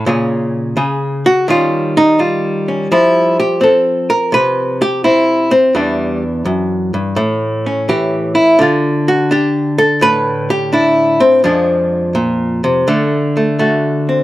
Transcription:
hollow-body jazz guitar
0.06 A#2 C#3 C#4 G#4
0.77 C#3 G#4
1.26 F#4
1.48 D#3 G3 C#4 F4
1.97 D#4
2.19 G3 F4
2.68 C#4
2.92 F3 E4
3.40 G4
3.61 C4 A4
4.10 A#4
4.32 C3 B4
4.82 G4
5.04 C4 E4
5.51 C4
5.75 E2 E3 G3 D4
6.45 F#2
6.94 G2
7.16 A2
7.66 C#4
7.89 E3 G4
8.35 E4
8.59 D3 F4
9.08 F#4
9.31 D4 G4
9.78 A4
10.01 A2 B4
10.50 G4
10.73 D4 E4
11.20 C4
11.44 F2 F3 G#3 D4
12.15 A#2
12.64 C3
12.88 D3 A3
13.37 A3
13.59 A3 F#4
14.09 C4

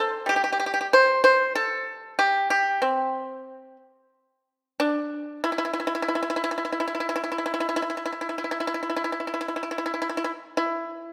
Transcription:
pipa
0.00 A4
0.26 G3 G4
0.36 G4
0.44 G4
0.52 G4
0.60 G4
0.66 G4
0.74 G4
0.81 G4
0.93 C5
1.24 C5
1.55 A4
2.19 G4
2.50 G4
2.82 C4
4.80 D4
5.44 E4
5.52 E4
5.58 E4
5.65 E4
5.73 E4
5.80 E4
5.87 E4
5.95 E4
6.02 E4
6.08 E4
6.15 E4
6.22 E4
6.30 E4
6.36 E4
6.44 E4
6.51 E4
6.58 E4
6.65 E4
6.72 E4
6.80 E4
6.88 E4
6.95 E4
7.00 E4
7.09 E4
7.16 E4
7.24 E4
7.32 E4
7.38 E4
7.46 E4
7.54 E4
7.60 E4
7.69 E4
7.76 E4
7.82 E4
7.90 E4
7.97 E4
8.06 E4
8.12 E4
8.21 E4
8.29 E4
8.38 E4
8.44 E4
8.51 E4
8.60 E4
8.67 E4
8.74 E4
8.83 E4
8.90 E4
8.96 E4
9.04 E4
9.12 E4
9.20 E4
9.27 E4
9.34 E4
9.41 E4
9.48 E4
9.56 E4
9.63 E4
9.71 E4
9.78 E4
9.86 E4
9.94 E4
10.02 E4
10.09 E4
10.17 E4
10.24 E4
10.57 E4

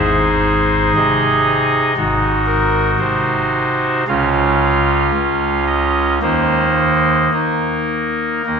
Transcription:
pipe organ
Already playing: G#1 G#2 D#4 G#4 C5
0.95 C3 D#5
1.97 G#1 G#2 D#4 F#4
2.46 A#4
2.99 C3 C5
4.08 C#2 C#3 C#4 F4 F5
5.13 C#2
5.67 D#5
6.22 D#2 D#3 A#3 D#4 C5
7.33 D#4 A#4
8.46 D#2 D#3 A#3 D#4

